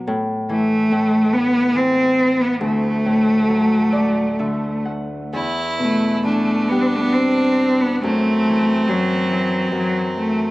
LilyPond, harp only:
<<
  \new Staff \with { instrumentName = "Harp" } { \time 3/4 \key e \minor \tempo 4 = 68 r2. | r4. d''8 e''8 fis''8 | r2. | r2. | }
  \new Staff \with { instrumentName = "Harp" } { \clef bass \time 3/4 \key e \minor a,8 e8 a,4 e4 | d,8 a,8 fis4 d4 | e,8 b,8 e8 g4. | fis,8 e8 fis,8 e8 fis,4 | }
>>